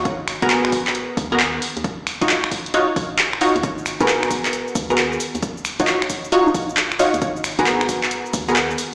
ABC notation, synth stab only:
X:1
M:4/4
L:1/16
Q:"Swing 16ths" 1/4=134
K:G#m
V:1 name="Synth stab"
z3 [B,FGA]8 [B,FGA] z4 | z3 [D^EFc]2 z3 [DEFc] z4 z [DEFc] z | z3 [B,FGA]8 [B,FGA] z4 | z3 [D^EFc]2 z3 [DEFc] z4 z [DEFc] z |
z3 [B,FGA]8 [B,FGA] z4 |]